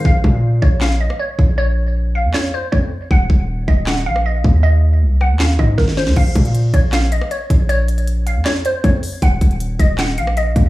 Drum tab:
CC |----------------|----------------|----------------|----------------|
HH |----------------|----------------|----------------|----------------|
CP |--------x-------|--------x-------|--------x-------|--------x-------|
SD |--------o--r----|--------o-------|--------o--r----|------r-o---oooo|
BD |o-o---o-------o-|------------o---|o-o---o-------o-|----------o-o---|

CC |x---------------|----------------|----------------|
HH |--xxx-x-x-x-x-x-|x-xxx-x-x-x-x-o-|x-xxx-x-x-x-x-x-|
CP |--------x-------|--------x-------|--------x-------|
SD |--------o--r----|--------o-------|--------o--r----|
BD |o-o---o-------o-|------------o---|o-o---o-------o-|